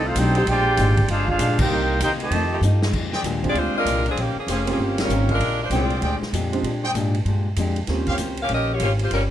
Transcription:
Already playing: C2
0.05 A3 C4 D#4 F4 A4 C5 F5
0.15 B1 F2 D#3 A3 C4 D4 D#4 G4 A4 C5 G5, hi-hat pedal, ride
0.35 D3 G#3 C4 G4, ride
0.46 A#1 A#2 G#3 D4 G4, ride
0.50 F4 G4 C5 D5 G5
0.77 G#1 A#2 D3 G#3 C4 D4 G4, hi-hat pedal, ride
0.97 kick, ride
1.08 G1 A#2 G#3 D4 F4 G4 G#4 C5 F5, ride
1.28 G#3 D4 F4 G#4 C5 F5, kick
1.39 A#1 A#2 G#3 D4 G4, hi-hat pedal, ride
1.59 A#3 D#4 G4 A#4 C5 G5, kick, crash
1.70 C2 C3 A#3 D#4 G4
2.00 D#2 C3 A#3 D#4 G4 A#4 C5 G5, hi-hat pedal, ride
2.19 C3 D#3 A3 G4 C5 A5, muted upright bass stroke, ride
2.24 D#5
2.30 F2 F3 A3 D#4, ride
2.35 G4
2.52 F3 A3 D#4 G4
2.61 G2 F3 A3 D#4, hi-hat pedal
2.65 G4
2.82 snare
2.93 F2 A#2 G#3 D4 G4, kick, crash
3.13 G#4 C5 D5 G5, snare
3.23 D#2 A#2 G#3 D4 G4, hi-hat pedal, ride
3.43 G#3 C4 D4 F4 G4, kick, ride
3.48 C4 F4 G#4 D5
3.54 D2 A#2 G#3 D4 F4 C5, ride
3.59 G4
3.74 G#3 D4 F4 A#4, muted upright bass stroke
3.85 C2 A#2 G#3 D4 G4, hi-hat pedal, ride
4.06 F3 C4 D4 G#4, ride
4.15 A#1 D#3 F3 C#4 G4 C5, ride
4.19 A#3 C#4 G4
4.36 F3 A#3 C#4 G#4, muted upright bass stroke
4.47 F1 D#3 C#4 G4 C5 C#5 F5, hi-hat pedal, ride
4.51 F3 A#3 G#4
4.66 A#3 C4 C#4 F4 G4, ride
4.71 F3 A#3 C#4 G#4
4.78 G1 D#3 C#4 G4 C5
4.82 F3 A#3 C#4 G4
4.98 G3 C#4 F4 A#4, snare, ride
5.08 G#1 D#3 A#3 C4 C#4 F4 G4 A#4 C5, hi-hat pedal
5.29 G#3 D4 F4 A#4, kick, ride
5.39 A#1 A#2 G#3 D4 G4, ride
5.61 G#3 D4 F4 C5
5.70 C2 A#2 G#3 C4 D4 F4 G4 G#4 C5 D5 G5, hi-hat pedal, ride
5.90 ride
6.01 D2 A#2 G#3 D4 G4 G#4 C5 D5 G5, ride
6.21 muted upright bass stroke, snare
6.33 F2 A#2 G#3 D4 G4, hi-hat pedal, ride
6.52 G#3 C4 D4 F4 G4, ride
6.63 A#2 G#3 D4 G4, ride
6.84 G#4 C5 D5 G5, snare
6.94 G#2 A#2 G#3 D4 G4, hi-hat pedal, ride
7.14 ride
7.25 G2 A#2 G#3 D4 G4, ride
7.56 F2 A#2 G#3 D4 G4, hi-hat pedal, ride
7.76 ride
7.87 D#2 D#3 A#3 C4 C#4 F4 G4 C5, snare, ride
8.07 G4 C5 C#5 F5, kick, ride
8.18 C#2 D#3 C#4 G4 C5, hi-hat pedal, ride
8.37 ride
8.42 C#4 G4 A#4 F5
8.49 A#1 D#3 C#4 G4 C5, ride
8.53 C#4 G4 A#4 D#5
8.72 A#3 F4 G4 C#5
8.80 G#1 D#3 A#3 C#4 F4 G4 C5 C#5, hi-hat pedal, ride
8.99 A#3 F4 G4 C5, ride
9.11 G1 D#3 G3 C#4 F4 G4 A#4 C5, ride

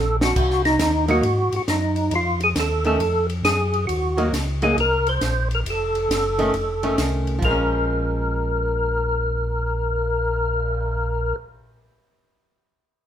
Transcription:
Already playing: A#1 A4
0.21 F#4, snare
0.36 C2, kick, crash
0.50 snare
0.65 D#4, snare, ride
0.79 D#2, snare, hi-hat pedal, ride
1.08 F#3 A#3 D#4 F#4, ride
1.23 G#2, ride
1.52 G#2, ride
1.56 F#4
1.68 F#2 D#4, snare, hi-hat pedal, ride
1.96 ride
2.11 F2, ride
2.15 F4
2.40 G#4, ride
2.56 D#2 A4, snare, hi-hat pedal, ride
2.84 D#3 A3 C#4 A4, ride
3.00 F2, ride
3.30 ride
3.43 F#2 G#4, snare, hi-hat pedal, ride
3.74 ride
3.87 D#2 F#4, ride
4.17 F#3 A#3 D#4, ride
4.32 C#2, snare, hi-hat pedal, ride
4.62 F#3 A#3 D#4 G#4, ride
4.77 C2 A#4, ride
5.07 C5, ride
5.21 A#1, snare, hi-hat pedal, ride
5.51 A#4, ride
5.66 F1, ride
5.70 A4
5.95 ride
6.09 F#1, snare, hi-hat pedal, ride
6.39 D#3 A3 C#4, ride
6.54 F1, ride
6.83 D#3 A3 C#4, ride
6.98 C2, snare, hi-hat pedal, ride
7.27 ride
7.39 A#1 F3, kick, crash
7.45 G#3 A#4
7.51 C#4
7.71 cymbal swell

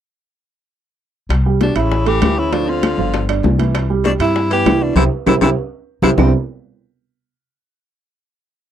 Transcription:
1.29 C2, high bongo, high conga, high timbale, claves
1.46 G3 G4, high conga
1.61 B2 D4, high bongo, high conga, high timbale, low timbale
1.76 A1 C#3 E4 E5, high bongo, high conga, high timbale, claves
1.92 high bongo, high conga
2.06 E3 A3 G4 A4, high bongo, high conga, high timbale
2.21 D2 E3 E4, high bongo, low bongo, high conga, high timbale, low timbale, claves
2.37 C#3 E4, high bongo, high conga
2.52 A2 F3 D4 F4, high bongo, high conga, high timbale
2.67 D3 C4 F4 C5, high conga
2.83 high bongo, high conga, high timbale, low timbale, claves
2.98 G1 F3 F4, high bongo
3.14 high bongo, high conga, high timbale
3.29 D4 D5, high bongo, high conga, high timbale, claves
3.43 C2, high bongo, low bongo, high conga, low timbale
3.59 E3 E4, high bongo, high conga, high timbale
3.75 high bongo, high conga, high timbale, claves
3.90 G3 G4, high conga
4.04 B2 D4, high bongo, high conga, high timbale, low timbale
4.19 G2 C3 E4 E5, high bongo, high conga, high timbale, claves
4.36 high bongo, high conga
4.50 E3 B3 G4 B4, high bongo, high conga, high timbale
4.65 C2 E3 E4, high bongo, low bongo, high conga, high timbale, low timbale, claves
4.81 B2 D4, high bongo, high conga
4.95 C2 C3 C4 E4 G4, low bongo, low conga, high timbale, claves
5.26 C2 C3 C4 E4 G4, low bongo, low conga, high timbale, claves
5.41 C2 C3 C4 E4 G4, low bongo, low conga, high timbale, claves
6.02 C2 C3 C4 E4 G4, low bongo, low conga, high timbale, claves
6.17 C2 G2 C3 G3 B3 C4 D4 E4, low bongo, low conga, low timbale, claves

